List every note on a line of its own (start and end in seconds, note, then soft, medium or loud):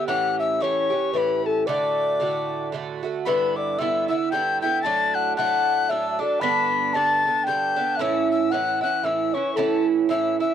0.07 0.59 A2 medium
0.07 0.61 E3 medium
0.07 0.62 C#4 medium
0.07 0.62 G4 medium
0.07 0.41 F#5 loud
0.07 0.36 F#6 medium
0.39 0.64 E5 medium
0.39 0.63 E6 medium
0.60 0.91 A2 soft
0.60 0.92 E3 medium
0.60 0.91 C#4 medium
0.60 0.89 G4 medium
0.60 1.13 C#5 loud
0.60 1.19 C#6 medium
0.90 1.13 E3 soft
0.90 1.14 C#4 soft
0.90 1.13 G4 soft
1.14 1.66 A2 medium
1.14 1.67 E3 soft
1.14 1.68 C#4 medium
1.14 1.68 G4 soft
1.14 1.42 B4 medium
1.14 1.47 B5 medium
1.45 1.68 A4 medium
1.45 1.66 A5 medium
1.67 2.19 A2 medium
1.67 2.20 D3 medium
1.67 2.21 A3 medium
1.67 2.21 F#4 medium
1.67 2.73 D5 loud
1.67 2.69 D6 medium
2.20 2.71 A2 medium
2.20 2.73 D3 medium
2.20 2.73 A3 soft
2.20 2.74 F#4 medium
2.72 3.03 A2 soft
2.72 3.04 D3 soft
2.72 3.03 A3 medium
2.72 3.02 F#4 medium
3.03 3.26 D3 soft
3.03 3.26 A3 soft
3.03 3.25 F#4 soft
3.25 3.77 G2 medium
3.25 3.80 D3 medium
3.25 3.79 B3 medium
3.25 3.80 E4 medium
3.25 3.54 B4 medium
3.25 3.58 B5 medium
3.56 3.80 D5 medium
3.56 3.80 D6 medium
3.79 4.09 G2 medium
3.79 4.10 D3 medium
3.79 4.09 B3 medium
3.79 4.07 E4 medium
3.79 4.09 E5 medium
3.79 4.08 E6 medium
4.08 4.32 D3 soft
4.08 4.32 B3 soft
4.08 4.31 E4 soft
4.08 4.16 E5 medium
4.08 4.29 E6 medium
4.30 4.62 G2 soft
4.30 4.63 D3 soft
4.30 4.62 B3 soft
4.30 4.59 G5 medium
4.30 4.60 G6 medium
4.35 4.61 E4 soft
4.62 4.85 D3 soft
4.62 4.85 B3 soft
4.62 4.84 E4 soft
4.62 4.85 G5 medium
4.62 4.82 G6 medium
4.82 5.36 A2 medium
4.82 5.37 F#3 medium
4.82 5.38 A3 medium
4.82 5.39 D4 medium
4.82 5.17 A5 medium
4.82 5.16 A6 medium
5.14 5.36 F#5 medium
5.14 5.36 F#6 medium
5.36 5.88 A2 medium
5.36 5.89 F#3 medium
5.36 5.90 A3 medium
5.36 5.92 D4 medium
5.36 5.91 F#5 loud
5.36 5.92 F#6 medium
5.89 6.20 A2 soft
5.89 6.20 F#3 soft
5.89 6.20 A3 soft
5.89 6.17 D4 soft
5.89 6.10 E5 medium
5.89 6.21 E6 medium
6.10 6.21 E5 medium
6.19 6.42 F#3 soft
6.19 6.42 A3 soft
6.19 6.41 D4 soft
6.19 6.42 D5 medium
6.19 6.43 D6 medium
6.40 6.93 G2 medium
6.40 6.94 D3 medium
6.40 6.95 B3 medium
6.40 6.95 D4 medium
6.40 6.95 B5 loud
6.40 6.97 B6 medium
6.93 7.25 G2 medium
6.93 7.25 D3 medium
6.93 7.26 B3 medium
6.93 7.24 D4 medium
6.93 7.45 A5 loud
6.93 7.46 A6 medium
7.25 7.46 D3 soft
7.25 7.47 B3 soft
7.25 7.47 D4 soft
7.44 7.77 G2 soft
7.44 7.98 G5 medium
7.44 7.97 G6 medium
7.48 7.78 D3 soft
7.48 7.77 B3 soft
7.48 7.75 D4 soft
7.76 8.00 D3 soft
7.76 8.00 B3 soft
7.76 7.99 D4 medium
7.95 8.52 E5 medium
7.95 8.03 F#6 medium
7.99 8.50 A2 medium
7.99 8.52 E3 medium
7.99 8.52 C#4 medium
7.99 8.54 E4 medium
7.99 8.31 E6 medium
8.32 8.53 E6 medium
8.50 8.82 A2 medium
8.50 8.83 E3 medium
8.50 8.82 C#4 medium
8.50 8.80 E4 medium
8.50 9.05 F#5 medium
8.50 8.82 F#6 medium
8.81 9.03 E3 soft
8.81 9.05 C#4 soft
8.81 9.04 E4 soft
8.81 9.07 F#6 medium
9.04 9.34 A2 soft
9.04 9.35 E3 soft
9.04 9.34 C#4 medium
9.04 9.33 E4 soft
9.04 9.35 E5 medium
9.04 9.36 E6 medium
9.33 9.56 E3 soft
9.33 9.57 C#4 soft
9.33 9.57 E4 soft
9.33 9.54 C#5 medium
9.33 9.58 C#6 medium
9.55 10.08 A2 medium
9.55 10.10 E3 medium
9.55 10.10 C#4 medium
9.55 9.84 A4 medium
9.55 9.87 A5 medium
9.59 10.12 E4 medium
10.09 10.40 A2 medium
10.09 10.40 E3 medium
10.09 10.41 C#4 medium
10.09 10.39 E4 medium
10.09 10.38 E5 loud
10.09 10.38 E6 medium
10.40 10.54 E3 soft
10.40 10.54 C#4 soft
10.40 10.54 E4 soft
10.40 10.54 E5 medium
10.40 10.54 E6 medium